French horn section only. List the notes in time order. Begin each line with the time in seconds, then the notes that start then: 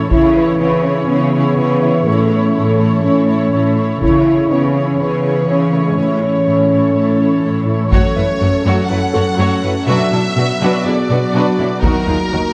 0.11 E4
0.61 B3
0.85 C#4
0.98 C#4
1.08 B3
2.07 A3
3.04 C#4
4.02 E4
4.51 B3
4.75 C#4
4.89 C#4
5.00 B3
5.48 C#4
5.74 A3
5.87 G#3
5.98 C#4